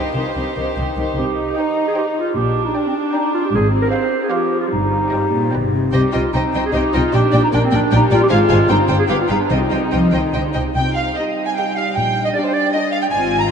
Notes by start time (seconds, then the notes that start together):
Already playing: D#3 D#4 G4 C5
0.14 C2 C3 D#3 D#4 G4 C5
0.35 C2 C3 D#3 D#4 G4 C5
0.56 C2 C3 D#3 D#4 G4 C5
0.76 C2 C3 D#3 D#4 G4 C5
0.96 C2 C3 D#3 D#4 G4 C5
1.17 C2 C3 D#4 G4
1.57 D#4 C5 D#5 G5
1.88 G#4
1.96 G4 C5 D#5 G5
2.18 F4
2.36 A#1 A#2 D4 G4
2.65 D#4
2.75 D4 D5 G5
2.86 C4
2.95 D4
3.14 D#4 D5 G5
3.34 F4
3.45 G4
3.52 G#1 G#2 C4 G#4
3.82 A#4
3.90 C5 F5
4.23 G#4
4.29 F3 G4 C5 F5
4.61 F4
4.71 G1 G2 G3 D#4
5.12 G2 C5 D#5 G5
5.32 A#2
5.52 G1 B2 B4 D5 G5
5.73 C3
5.92 C2 C3 G3 G4 C5 D#5 G5
6.12 C2 C3 F4 C5 D#5 G5
6.33 C2 C3 C4 D#4 C5 D#5 G5
6.54 C2 C3 C5 D#5 G5
6.66 G#4
6.72 C2 C3 D#4 G4 C5 D#5 G5
6.93 C2 C3 F4 C5 D#5 G5
7.12 A#1 A#2 D4 G4 D5 G5
7.32 A#1 A#2 D5 G5
7.44 D#4
7.52 A#1 A#2 A#3 D4 D5 G5
7.64 C4
7.72 A#1 A#2 D4 D5 G5
7.91 A#1 A#2 G3 D5 G5
7.96 D#4
8.11 A#1 A#2 F4 D5 G5
8.23 G4
8.29 G#1 G#2 G#3 C5 F5 G#5
8.33 F4
8.49 G#1 G#2 C5 F5 G#5
8.69 G1 G2 C4 D#4 C5 G5
8.88 G1 G2 C5 G5
8.99 G#4
9.08 G1 G2 B3 G4 B4 F5 G5
9.21 F4
9.29 G1 G2 D#4 B4 F5 G5
9.42 D4
9.50 C2 C3 C4 D#4 C5 D#5 G5
9.70 C2 C3 C5 D#5 G5
9.91 C2 F3 C5 D#5 G5
10.12 C2 D#3 C5 D#5 G5
10.33 C2 D3 C5 D#5 G5
10.53 C2 C3 C5 D#5 G5
10.75 C2 C3 G3 D#4 G5
10.94 F5
11.15 D#4 G4 D#5
11.45 G#5
11.55 D#4 G4 G5
11.75 F5
11.94 A#1 A#2 D4 G5
12.24 D#5
12.33 D4 G4 D5
12.43 C5
12.54 D5
12.72 D4 G4 D#5
12.91 F5
13.02 G5
13.10 G#1 G#2 C4 F4 G#5
13.39 A#5